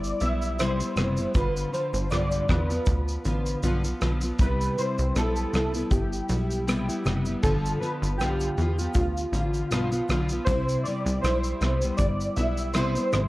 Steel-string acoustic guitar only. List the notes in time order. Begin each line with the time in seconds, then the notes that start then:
Already playing: G3 B3 E4
0.22 G3 B3 E4
0.59 C3 G3 B3 E4
0.81 G3 B3 E4
0.97 C3 G3 B3 E4
1.18 G3 B3 E4
1.35 G2 D3 F3 B3 F4
1.72 D3 F3 F4
2.11 G2 D3 F3 B3 F4
2.48 D3 F3 B3 F4
2.71 F3 B3 F4
3.25 D3 F3 B3 F4
3.63 G2 D3 F3 B3 F4
3.84 F3 B3 F4
4.01 D3 F3 B3 F4
4.23 F3 B3 F4
4.41 C3 G3 B3 E4
4.78 C3 G3 E4
5.17 G3 B3 E4
5.53 C3 G3 B3 E4
5.75 G3 B3 E4
6.31 G3 B3 E4
6.67 C3 G3 B3 E4
6.89 G3 B3 E4
7.06 C3 G3 B3 E4
7.27 G3 B3 E4
7.44 G2 D3 F3 B3 F4
7.81 D3 F3 B3 F4
8.20 G2 D3 F3 B3 F4
8.58 D3 F3 B3 F4
8.79 F3 B3 F4
9.33 D3 F3 B3 F4
9.71 G2 D3 F3 B3 F4
9.92 F3 B3 F4
10.09 D3 F3 B3 F4
10.32 F3 B3 F4
10.50 C3 G3 E4
10.87 C3 G3 B3 E4
11.25 G3 E4
11.61 C3 G3 B3 E4
11.81 G3 B3 E4
12.37 G3 B3 E4
12.75 C3 G3 B3 E4
12.96 G3 B3 E4
13.14 C3 G3 B3 E4